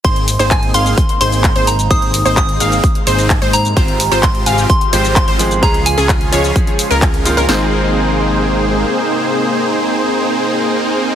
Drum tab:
HH |xxoxxxoxxxoxxxox|xxoxxxoxxxoxxxox|xxoxxxoxxxoxxxox|xxoxxxoxxxoxxxox|
SH |x-xxx-xxx-xxx-xx|x-xxx-xxx-xxx-xx|x-xxx-xxx-xxx-xx|x-xxx-xxx-xxx-xx|
CP |----x-------x---|----x-------x---|----x-------x---|----x-------x---|
SD |----------------|----------------|----------------|----------------|
BD |o---o---o---o---|o---o---o---o---|o---o---o---o---|o---o---o---o---|

HH |o---------------|----------------|
SH |----------------|----------------|
CP |----------------|----------------|
SD |o---------------|----------------|
BD |----------------|----------------|